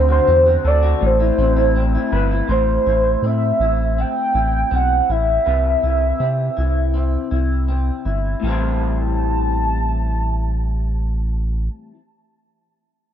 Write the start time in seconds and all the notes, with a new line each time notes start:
Already playing: D2 D3 C4
0.09 F#4 C5
0.27 E2 C4
0.46 F#4
0.64 D2 A4 D5
0.83 F#4
1.01 A1 A2
1.05 C5
1.20 E4
1.38 A1 C4
1.56 E4
1.76 C4
1.95 E4
2.12 G1 B4
2.31 E4
2.48 A1 A2 C5
2.86 A1 E4
3.22 A2 C4 E5
3.60 A1 E4
3.98 C4 G5
4.34 A1 E4
4.71 B1 C4 F#5
5.09 A1 E4 E5
5.46 C2 C3 B4
5.83 C2 E4
6.20 C3 C4
6.57 C2 E4
6.94 C4
7.31 C2 E4
7.68 C4
8.05 G1 E4
8.40 A1 A2 E3
8.44 G3 C4 E4 A5
8.50 C5